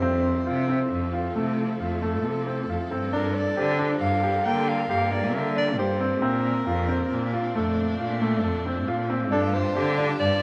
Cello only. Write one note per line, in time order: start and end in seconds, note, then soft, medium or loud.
0.03 0.43 F2 medium
0.47 0.88 C3 medium
0.92 1.32 F2 medium
1.36 1.76 C3 medium
1.81 2.26 F2 medium
2.25 2.69 C3 medium
2.69 2.89 F2 medium
2.91 3.13 G2 medium
3.13 3.53 G2 medium
3.57 3.98 D3 medium
4.01 4.42 G2 medium
4.47 4.86 D3 medium
4.91 5.37 G2 medium
5.35 5.81 D3 medium
5.80 6.26 G2 medium
6.24 6.64 A#2 medium
6.67 7.07 F2 medium
7.12 7.51 A#2 medium
7.56 7.96 F2 medium
8.00 8.46 A#2 medium
8.44 8.89 F2 medium
8.88 9.33 A#2 medium
9.32 9.72 G2 loud
9.77 10.16 D3 loud
10.21 10.42 G2 medium